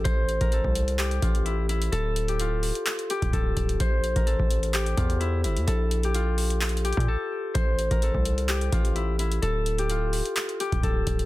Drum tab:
HH |x-----x--x--x-----x--x--x--x--x--x--x-----x--x--|x-----x--x--x-----o--x--x--x--x--x--x-----x--x--|x-----x--x--x-----x--x--x--x--x--x--x-----x--x--|x-----x--x--x-----o--x--x-x-x-x-x-x-------------|
CP |------------------------x-----------------------|------------------------x-----------------------|------------------------x-----------------------|------------------------x-----------------------|
BD |o--------o-----o--------------o-----------------|---------------------------------o--o-----o-----|o--------o-----o--------------o-----------------|---------------------------------o--------------|

HH |x-----x--x--x-----x--x--x--x--x--x--x-----x--x--|x-----x--x--x-----o--x--x--x--x--x--x-----x--x--|
CP |------------------------x-----------------------|------------------------x-----------------------|
BD |o--------o-----o--------------o-----------------|---------------------------------o--o-----o-----|